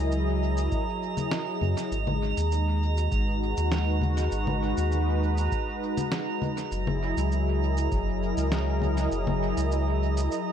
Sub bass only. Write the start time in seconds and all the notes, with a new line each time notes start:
Already playing: C#2
1.62 F#2
1.91 G#1
2.37 D#2
3.12 G#1
3.57 D#2
4.32 G#1
4.77 D#2
6.72 F#1
7.17 C#2
7.92 F#1
8.37 C#2
9.12 F#1
9.57 C#2